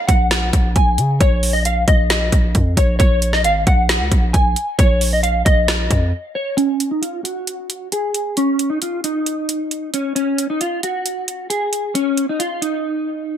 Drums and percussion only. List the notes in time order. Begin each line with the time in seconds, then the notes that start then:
0.09 kick, closed hi-hat
0.31 snare, closed hi-hat
0.53 kick, closed hi-hat
0.76 kick, closed hi-hat
0.98 closed hi-hat
1.21 kick, closed hi-hat
1.43 open hi-hat
1.65 closed hi-hat
1.88 kick, closed hi-hat
2.10 snare, closed hi-hat
2.32 kick, closed hi-hat
2.55 kick, closed hi-hat
2.77 kick, closed hi-hat
3.00 kick, closed hi-hat
3.22 closed hi-hat
3.33 snare
3.44 closed hi-hat
3.67 kick, closed hi-hat
3.89 snare, closed hi-hat
4.12 kick, closed hi-hat
4.34 kick, closed hi-hat
4.56 closed hi-hat
4.79 kick, closed hi-hat
5.01 open hi-hat
5.24 closed hi-hat
5.46 kick, closed hi-hat
5.68 snare, closed hi-hat
5.91 kick, closed hi-hat
6.58 closed hi-hat
6.80 closed hi-hat
7.03 closed hi-hat
7.25 closed hi-hat
7.47 closed hi-hat
7.70 closed hi-hat
7.92 closed hi-hat
8.14 closed hi-hat
8.37 closed hi-hat
8.59 closed hi-hat
8.82 closed hi-hat
9.04 closed hi-hat
9.26 closed hi-hat
9.49 closed hi-hat
9.71 closed hi-hat
9.94 closed hi-hat
10.16 closed hi-hat
10.38 closed hi-hat
10.61 closed hi-hat
10.83 closed hi-hat
11.06 closed hi-hat
11.28 closed hi-hat
11.50 closed hi-hat
11.73 closed hi-hat
11.95 closed hi-hat
12.17 closed hi-hat
12.40 closed hi-hat
12.62 closed hi-hat